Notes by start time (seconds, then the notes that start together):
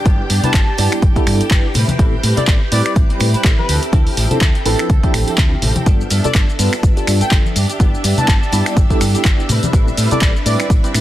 Already playing: G4 G5, downlifter
0.05 G1 G3 B3 D4 E4 G4 B4, kick, closed hi-hat, tambourine
0.20 muted fingered electric bass stroke
0.29 G2 B3 D4 G4, open hi-hat, tambourine
0.43 G3 B3 D4 E4 G4 B4 A5, muted fingered electric bass stroke, closed hi-hat, tambourine, low conga
0.53 G1 B3, kick, clap, closed hi-hat
0.67 D4 G4
0.77 G2 G3 B3 D4 E4 G4 D5, open hi-hat, tambourine
0.91 D4 G4, finger snap, closed hi-hat, tambourine
1.02 G1, kick, closed hi-hat, tambourine
1.15 G3 B3 D4 E4 G4 A4, kick, closed hi-hat, high conga
1.26 G2, finger snap, open hi-hat, tambourine
1.39 D4 G4, muted fingered electric bass stroke, closed hi-hat, tambourine
1.50 G1 B3 D4 E4 G4 B4, kick, clap, closed hi-hat
1.74 A2 G3 C4 E4 B4, open hi-hat, tambourine, low conga
1.88 C4 E4 B4, closed hi-hat, tambourine, high conga, low conga
1.98 A1 G3 B3 C4 E4 A4 B4, kick, closed hi-hat
2.22 A2 G3 C4 E4 B4, open hi-hat, tambourine
2.36 G3 B3 C4 E4 A4 B4 D5, muted fingered electric bass stroke, closed hi-hat, tambourine, low conga
2.47 A1 G3 C4 E4 B4, kick, clap, closed hi-hat
2.60 C4 E4 B4
2.71 A2 G3 C4 E4 B4 D5, open hi-hat, tambourine
2.85 C4 E4 B4 D5, finger snap, tambourine
2.95 A1, kick, closed hi-hat, tambourine
3.09 G3 C4 E4 G4 B4, muted fingered electric bass stroke, closed hi-hat
3.20 A2, finger snap, open hi-hat, tambourine
3.33 C4 E4 B4, muted fingered electric bass stroke, closed hi-hat, tambourine
3.44 A1 G3 B3 C4 E4 A4 B4, kick, clap, closed hi-hat
3.58 B4, high conga
3.68 D2 F3 C4 E4 A4, open hi-hat, tambourine
3.82 C4 E4 A4, closed hi-hat, tambourine
3.92 D2 F3 C4 D4 E4 A4, kick, closed hi-hat, tambourine
4.07 muted fingered electric bass stroke, open hi-hat
4.16 A1 F3 C4 E4 A4, open hi-hat, tambourine
4.30 F3 C4 D4 E4 A4, closed hi-hat, tambourine, low conga
4.41 D2 F3 C4 E4 A4, kick, clap, closed hi-hat
4.54 C4 E4 A4, closed hi-hat
4.65 A1 F3 C4 D4 E4 A4 B4, open hi-hat, tambourine
4.78 C4 E4 A4, finger snap, closed hi-hat, tambourine
4.90 D2, kick, closed hi-hat, tambourine
5.03 F3 C4 D4 E4 G4 A4, muted fingered electric bass stroke, kick, closed hi-hat, high conga
5.14 A1, finger snap, open hi-hat, tambourine
5.27 C4 E4 A4, muted fingered electric bass stroke, closed hi-hat, tambourine
5.38 D2 F3 C4 E4 A4, kick, clap, closed hi-hat
5.62 A1 F3 C4 E4 A4, open hi-hat, tambourine, low conga
5.75 C4 E4 A4, closed hi-hat, tambourine, high conga, low conga
5.86 G1 F3 G3 B3 D4 F4 A4 E5, kick, closed hi-hat, cabasa
6.01 cabasa
6.10 G2 F3 B3 D4 A4, open hi-hat, tambourine, cabasa
6.24 G3 B3 D4 F4 A4 D5, muted fingered electric bass stroke, closed hi-hat, tambourine, low conga, cabasa
6.35 G1 F3 B3 D4 A4 D5, kick, clap, closed hi-hat, cabasa
6.48 B3 D4 A4, cabasa
6.58 G2 F3 G3 B3 D4 F4 A4 B4, open hi-hat, tambourine, cabasa
6.72 B3 D4 A4, finger snap, tambourine, cabasa
6.83 G1, kick, closed hi-hat, cabasa
6.96 G3 B3 D4 F4 G4 A4, muted fingered electric bass stroke, closed hi-hat, cabasa
7.07 G2, finger snap, open hi-hat, tambourine, cabasa
7.20 B3 D4 A4 G5, muted fingered electric bass stroke, closed hi-hat, tambourine, cabasa
7.31 G1 F3 G3 B3 D4 F4 A4, kick, clap, closed hi-hat, cabasa
7.46 high conga, cabasa
7.55 G2 B3 D4 G4, open hi-hat, tambourine, cabasa
7.69 D4 G4, closed hi-hat, tambourine, cabasa
7.79 G1 G3 B3 D4 E4 G4 B4, kick, closed hi-hat, cabasa
7.94 muted fingered electric bass stroke, cabasa
8.03 G2 B3 D4 G4, open hi-hat, tambourine, cabasa
8.17 G3 B3 D4 E4 G4 B4 A5, muted fingered electric bass stroke, closed hi-hat, tambourine, low conga, cabasa
8.28 G1 B3 G4, kick, clap, closed hi-hat, cabasa
8.41 D4 G4, cabasa
8.52 G2 G3 B3 D4 E4 G4 D5, open hi-hat, tambourine, cabasa
8.65 D4 G4, finger snap, closed hi-hat, tambourine, cabasa
8.77 G1, kick, closed hi-hat, cabasa
8.89 G3 B3 D4 E4 G4 A4, kick, closed hi-hat, high conga, cabasa
9.00 G2, finger snap, open hi-hat, tambourine, cabasa
9.14 D4 G4, muted fingered electric bass stroke, closed hi-hat, tambourine, cabasa
9.24 G1 B3 D4, kick, clap, closed hi-hat, cabasa
9.40 cabasa
9.48 A2 G3 C4 E4 B4, open hi-hat, tambourine, low conga, cabasa
9.63 closed hi-hat, tambourine, high conga, low conga, cabasa
9.73 A1 G3 B3 C4 E4 A4 B4, kick, closed hi-hat, cabasa
9.88 cabasa
9.97 A2 G3 C4 E4 B4, open hi-hat, tambourine, cabasa
10.10 G3 B3 C4 E4 A4 B4 D5, muted fingered electric bass stroke, closed hi-hat, tambourine, low conga, cabasa
10.21 A1 G3 C4 E4 B4 D5, kick, clap, closed hi-hat, cabasa
10.34 C4 E4 B4, cabasa
10.45 A2 G3 C4 E4 B4 D5, open hi-hat, tambourine, cabasa
10.58 C4 E4 B4 D5, finger snap, closed hi-hat, tambourine, cabasa
10.70 A1, kick, closed hi-hat, tambourine, cabasa
10.83 G3 C4 E4 G4 B4, closed hi-hat, cabasa
10.94 A2, finger snap, open hi-hat, tambourine, cabasa